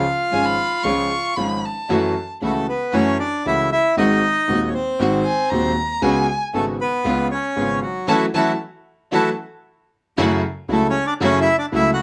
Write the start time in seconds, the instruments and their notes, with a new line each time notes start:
Already playing: bandoneon F4 F5
0.31 grand piano G#1 G#2 F3 G#3 C#4 G#4, string section G#3 C#4 F4, violin G#5
0.45 violin B5
0.84 grand piano C#2 C#3 F3 G#3 C#4 G#4, string section G#3 C#4 F4, violin C#6
1.36 grand piano G#1 G#2 F3 G#3 C#4 G#4, string section G#3 C#4 F4, violin B5
1.65 violin A5
1.89 grand piano F#2 E3 F#3 A3 C#4 F#4, string section A3 E4 F#4
2.41 grand piano C#2 C#3 E3 A3 C#4 F#4, string section A3 E4 F#4, bandoneon A3 A4
2.68 bandoneon B3 B4
2.92 grand piano F#2 E3 F#3 A3 C#4 F#4, string section A3 E4 F#4, bandoneon C#4 C#5
3.19 bandoneon D4 D5
3.46 grand piano C#2 C#3 E3 A3 C#4 F#4, string section A3 E4 F#4, bandoneon E4 E5
3.72 bandoneon E4 E5
3.97 grand piano G#1 G#2 D#3 G#3 C4 F#4, string section G#3 C4 F#4, bandoneon D#4 D#5
4.48 grand piano D#1 D#2 D#3 G#3 C4 F#4, string section G#3 C4 F#4
4.67 bandoneon C#5
4.74 bandoneon C4 C5
4.99 grand piano G#1 G#2 D#3 G#3 C4 F#4, string section G#3 C4 F#4
5.25 violin G#5
5.49 grand piano D#1 D#2 D#3 G#3 C4 F#4, string section G#3 C4 F#4, violin A#5
6.02 grand piano C#2 C#3 G#3 B3 F#4, string section B3 C#4 F#4, violin G#5
6.54 grand piano G#1 G#2 C#3 G#3 B3 F#4, bandoneon A3 A4, string section B3 C#4 F#4
6.81 bandoneon B3 B4
7.04 grand piano C#2 C#3 G#3 B3 F4, string section B3 C#4 F4
7.31 bandoneon C#4 C#5
7.56 grand piano G#1 G#2 C#3 G#3 B3 F4, string section B3 C#4 F4
7.83 bandoneon F#3 F#4
8.08 grand piano E3 F#3 A3, string section C#4 E4 F#4, bandoneon E4 F#4 A4, violin A5
8.34 grand piano E3 F#3 A3, string section C#4 E4 F#4, bandoneon E4 F#4 A4, violin A5
9.12 grand piano E3 F#3 A3, string section C#4 E4 F#4, bandoneon E4 F#4 A4, violin A5
10.18 grand piano F#2 C#3 F#3 A3 E4, string section A3 E4 F#4
10.68 grand piano C#2 C#3 F#3 A3 E4, string section A3 E4 F#4, bandoneon A3
10.72 bandoneon A4
10.90 bandoneon C#4 C#5
11.07 bandoneon D4 D5
11.20 grand piano F#2 C#3 F#3 A3 E4, string section A3 E4 F#4, bandoneon C#4
11.25 bandoneon C#5
11.41 bandoneon E4 E5
11.59 bandoneon D4 D5
11.72 grand piano C#2 C#3 F#3 A3 E4, string section A3 E4 F#4, bandoneon E4 E5
11.94 bandoneon F#4 F#5